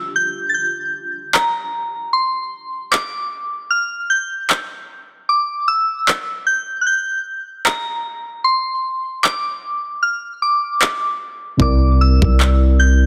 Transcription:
0.00 0.18 E6 loud
0.16 0.50 G6 loud
0.49 0.55 A6 medium
0.54 1.29 G6 loud
1.34 1.92 A#5 medium
1.34 clap loud
2.13 2.94 C6 medium
2.91 3.73 D6 medium
2.91 clap loud
3.71 4.11 F6 medium
4.10 4.85 G6 medium
4.50 clap loud
5.29 5.69 D6 loud
5.68 6.49 E6 loud
6.08 clap loud
6.47 6.81 G6 loud
6.81 6.87 F#6 medium
6.87 7.68 G6 loud
7.65 8.24 A#5 medium
7.65 clap loud
8.44 9.25 C6 medium
9.23 10.04 D6 medium
9.23 clap loud
10.03 10.17 F6 medium
10.42 11.17 D6 medium
10.82 clap loud
11.57 12.20 C2 loud
11.57 13.06 C3 medium
11.57 13.06 C4 medium
11.57 13.06 E4 medium
11.57 kick loud
11.61 13.06 A#4 medium
11.61 13.06 D5 medium
11.61 12.01 D6 medium
12.01 12.75 E6 loud
12.22 13.06 C2 medium
12.22 kick medium
12.40 clap loud
12.80 13.06 G6 loud

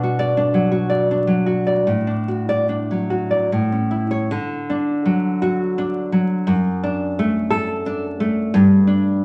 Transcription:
0.00 1.82 B2 medium
0.00 0.36 D4 medium
0.00 0.70 F#4 medium
0.19 0.47 D5 medium
0.37 1.10 D4 medium
0.54 1.26 F#3 medium
0.72 1.45 F#4 medium
0.90 1.65 D5 medium
1.11 1.88 D4 medium
1.27 1.87 F#3 medium
1.46 1.87 F#4 medium
1.67 1.87 D5 medium
1.87 3.46 A2 medium
2.07 2.68 D4 medium
2.28 3.09 F#4 medium
2.49 2.82 D5 medium
2.69 3.50 D4 medium
2.91 3.50 F#3 soft
3.10 3.50 F#4 medium
3.31 3.50 D5 medium
3.52 4.28 A2 medium
3.72 4.30 C#4 medium
3.91 4.29 E4 medium
4.11 4.29 C#5 medium
4.31 6.44 D3 medium
4.70 5.77 D4 medium
5.05 6.11 F#3 medium
5.42 5.97 F#4 medium
5.78 6.48 D4 medium
6.12 6.47 F#3 medium
6.47 8.50 F#2 medium
6.83 7.85 D4 medium
7.19 8.19 A3 medium
7.50 8.05 A4 loud
7.86 8.55 D4 medium
8.20 8.54 A3 medium
8.54 9.25 G2 loud
8.87 9.25 D4 medium

